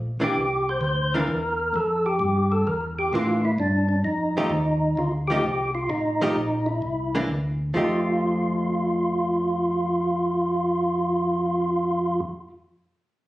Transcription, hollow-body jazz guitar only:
0.20 0.34 E3 medium
0.20 0.35 A#3 medium
0.20 0.35 D4 medium
1.15 1.28 E3 medium
1.15 1.28 A#3 medium
1.15 1.28 D4 medium
3.14 3.41 E3 soft
3.14 3.41 A#3 medium
3.14 3.41 D4 medium
4.37 4.51 F3 medium
4.37 4.51 A3 medium
4.37 4.51 D#4 medium
4.37 4.51 G4 medium
5.30 5.43 F3 medium
5.30 5.44 A3 medium
5.30 5.44 D#4 medium
5.30 5.44 G4 medium
6.21 6.35 F3 medium
6.21 6.35 A3 medium
6.21 6.36 D#4 medium
6.21 6.36 G4 medium
7.15 7.28 E3 medium
7.15 7.28 A#3 medium
7.15 7.28 D4 medium
7.74 12.47 F3 medium
7.74 12.49 A3 medium
7.74 12.50 D#4 medium
7.74 12.50 G4 medium

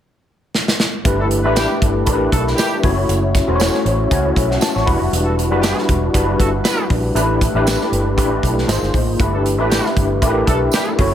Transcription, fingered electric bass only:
1.05 1.45 G1 loud
1.45 1.65 A1 medium
1.82 2.07 G1 medium
2.07 2.27 A1 medium
2.32 2.52 B1 medium
2.83 3.04 F#1 medium
3.09 3.40 F#1 loud
3.48 3.68 E1 medium
3.85 4.05 A1 medium
4.11 4.31 C#2 medium
4.36 4.56 B1 medium
4.76 4.85 A1 medium
4.87 4.98 E1 loud
5.01 5.10 F1 medium
5.12 5.51 E1 loud
5.51 5.72 F#1 medium
5.89 6.09 E1 medium
6.14 6.35 F#1 medium
6.39 6.60 G1 medium
6.90 7.10 A#1 medium
7.15 7.47 A1 loud
7.54 7.75 A1 medium
7.92 8.17 G1 medium
8.17 8.38 A1 medium
8.43 8.64 B1 medium
8.68 8.79 G#1 loud
8.82 8.92 G1 medium
8.94 9.08 A1 medium
9.08 9.17 G#1 medium
9.20 9.58 G1 loud
9.58 9.79 A1 medium
9.97 10.22 G1 medium
10.22 10.42 A1 medium
10.47 10.68 B1 medium
10.99 11.14 F#1 medium

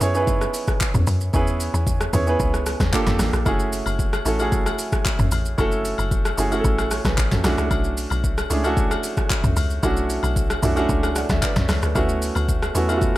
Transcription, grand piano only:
0.00 0.14 B3 loud
0.00 0.15 C#4 medium
0.00 0.02 E4 medium
0.00 0.12 E4 medium
0.00 0.02 G#4 medium
0.00 0.13 G#4 medium
0.00 0.17 B4 loud
0.00 0.13 C#5 loud
0.14 0.99 B3 medium
0.14 1.00 C#4 medium
0.14 0.21 D#4 medium
0.14 1.00 G#4 medium
0.14 1.01 B4 loud
0.22 1.03 E4 medium
1.33 1.98 B3 loud
1.33 1.98 C#4 medium
1.33 1.98 E4 medium
1.33 1.99 G#4 medium
1.33 1.99 B4 loud
2.13 2.24 B3 medium
2.13 2.24 C#4 medium
2.13 2.25 E4 medium
2.13 2.25 G#4 medium
2.13 2.25 C#5 loud
2.27 2.93 B3 medium
2.27 2.93 C#4 medium
2.27 2.93 E4 medium
2.27 2.94 G#4 medium
2.27 2.94 B4 loud
2.92 3.36 A#3 loud
2.92 3.36 D4 medium
2.92 3.36 F4 medium
2.92 3.37 G4 medium
2.92 3.37 A4 loud
3.45 4.10 A3 loud
3.45 4.10 C#4 medium
3.45 4.11 E4 medium
3.45 4.11 F#4 medium
3.45 4.11 G#4 loud
4.25 4.36 A3 medium
4.25 4.37 C#4 medium
4.25 4.37 E4 medium
4.25 4.37 F#4 medium
4.25 4.38 A4 loud
4.39 5.24 A3 medium
4.39 5.24 C#4 medium
4.39 5.25 E4 medium
4.39 5.25 F#4 medium
4.39 5.25 G#4 loud
5.58 6.22 A3 loud
5.58 6.23 C#4 medium
5.58 6.23 E4 medium
5.58 6.23 F#4 medium
5.58 6.24 A4 loud
6.37 6.49 A3 medium
6.37 6.49 C#4 medium
6.37 6.49 E4 medium
6.37 6.50 F#4 medium
6.37 6.50 G#4 loud
6.51 7.36 A3 medium
6.51 7.37 C#4 medium
6.51 7.37 E4 medium
6.51 6.92 F#4 medium
6.51 6.59 G#4 medium
6.60 6.91 A4 loud
6.92 7.05 A4 medium
6.92 7.05 C#5 medium
7.06 7.31 G#4 medium
7.06 7.30 B4 medium
7.32 7.45 F#4 medium
7.32 7.57 A4 medium
7.44 8.29 A3 medium
7.44 8.29 C#4 medium
7.44 8.30 D4 medium
7.44 8.30 E4 medium
7.44 8.30 F#4 loud
8.50 8.61 A3 medium
8.50 8.62 C#4 medium
8.50 8.62 D4 medium
8.50 8.62 E4 medium
8.50 8.63 G#4 loud
8.64 9.49 A3 loud
8.64 9.49 C#4 medium
8.64 9.49 D4 medium
8.64 9.50 E4 medium
8.64 9.50 F#4 loud
9.83 10.47 A3 loud
9.83 10.47 C#4 medium
9.83 10.48 D4 medium
9.83 10.48 E4 medium
9.83 10.48 F#4 loud
10.62 10.74 A3 medium
10.62 10.74 C#4 medium
10.62 10.74 D4 medium
10.62 10.75 E4 medium
10.62 10.75 F#4 loud
10.76 11.61 A3 loud
10.76 11.61 C#4 medium
10.76 11.62 D4 medium
10.76 11.62 E4 medium
10.76 11.62 F#4 loud
11.17 11.30 D5 medium
11.17 11.29 F#5 medium
11.31 11.43 C#5 medium
11.31 11.42 E5 medium
11.43 11.56 B4 medium
11.43 11.56 D5 medium
11.57 11.68 C#5 medium
11.57 11.69 E5 medium
11.70 11.83 A4 medium
11.70 11.82 C#5 medium
11.83 12.09 B4 medium
11.83 12.08 D5 medium
11.95 12.59 A3 medium
11.95 12.60 B3 medium
11.95 12.60 C#4 medium
11.95 12.60 E4 medium
11.95 12.61 F#4 loud
12.75 12.86 A3 medium
12.75 12.86 B3 medium
12.75 12.87 C#4 medium
12.75 12.87 E4 medium
12.75 12.87 F#4 loud
12.88 13.18 A3 loud
12.88 13.18 B3 medium
12.88 13.18 C#4 medium
12.88 13.18 E4 medium
12.88 12.96 F4 medium
12.97 13.18 F#4 loud

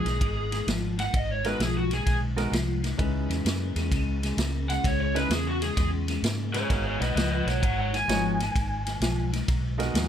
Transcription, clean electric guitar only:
0.05 0.19 G#2 medium
0.05 0.19 D#3 medium
0.20 0.48 G#2 medium
0.20 0.49 D#3 medium
0.51 0.65 G#2 medium
0.51 0.66 D#3 medium
0.67 0.95 G#2 medium
0.67 0.95 F3 loud
0.97 1.11 G#2 medium
0.97 1.12 D#3 medium
1.13 1.41 G#2 medium
1.13 1.41 D#3 medium
1.43 1.58 G#2 medium
1.43 1.58 D#3 medium
1.60 1.87 G#2 medium
1.60 1.88 F3 loud
1.91 2.05 G#2 medium
2.06 2.34 G#2 medium
2.06 2.34 D#3 medium
2.36 2.51 G#2 medium
2.36 2.51 D#3 medium
2.52 2.80 G#2 medium
2.52 2.80 F3 medium
2.83 2.97 G#2 medium
2.83 2.97 D#3 medium
2.98 3.26 C#3 medium
2.98 3.26 G#3 medium
3.29 3.43 C#3 medium
3.29 3.43 G#3 medium
3.45 3.73 C#3 medium
3.45 3.73 A#3 medium
3.76 3.90 C#3 medium
3.76 3.90 G#3 medium
3.91 4.19 C#3 medium
3.91 4.20 G#3 loud
4.22 4.36 C#3 medium
4.22 4.37 G#3 medium
4.37 4.65 C#3 medium
4.37 4.66 A#3 loud
4.68 4.82 C#3 medium
4.68 4.83 G#3 medium
4.84 5.12 C#3 medium
4.84 5.12 G#3 medium
5.14 5.29 C#3 medium
5.14 5.29 G#3 medium
5.30 5.58 C#3 medium
5.30 5.58 A#3 loud
5.61 5.75 C#3 medium
5.61 5.75 G#3 medium
5.76 6.04 C#3 medium
5.76 6.04 G#3 medium
6.08 6.22 C#3 medium
6.08 6.22 G#3 medium
6.23 6.51 C#3 medium
6.23 6.51 A#3 loud
6.54 6.68 C#3 medium
6.54 6.68 G#3 medium
6.70 6.97 G#2 medium
6.70 6.98 D#3 medium
7.00 7.14 G#2 medium
7.00 7.15 D#3 medium
7.16 7.44 G#2 medium
7.16 7.44 F3 loud
7.46 7.61 G#2 medium
7.46 7.61 D#3 medium
7.62 7.90 G#2 medium
7.62 7.90 D#3 medium
7.93 8.07 G#2 medium
7.93 8.07 D#3 medium
8.08 8.36 G#2 medium
8.08 8.37 F3 medium
8.40 8.54 G#2 medium
8.40 8.54 D#3 medium
8.55 8.83 G#2 medium
8.55 8.83 D#3 medium
8.86 9.00 G#2 medium
8.86 9.01 D#3 medium
9.02 9.29 G#2 medium
9.02 9.29 F3 loud
9.32 9.46 G#2 medium
9.32 9.46 D#3 medium
9.48 9.76 G#2 medium
9.48 9.76 D#3 medium
9.78 9.93 G#2 medium
9.78 9.93 D#3 medium
9.94 10.08 G#2 medium
9.94 10.08 F3 medium

